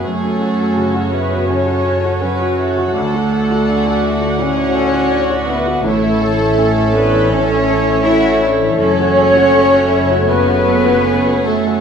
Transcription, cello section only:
X:1
M:4/4
L:1/8
Q:1/4=82
K:F#m
V:1 name="Cello section"
A,3 B, C2 F,2 | A,4 C3 B, | A,3 B, C2 E z | C4 B,3 A, |]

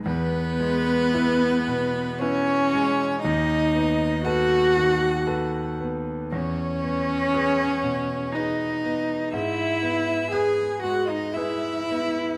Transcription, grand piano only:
X:1
M:3/4
L:1/8
Q:1/4=58
K:E
V:1 name="Grand piano"
E,, G, [EB] B,, [EB] G, | D,, B, [AB] D, [AB] B, | E,, B, [GB] B,, [GB] B, | G,, B, [GB] G, [GB] B, |]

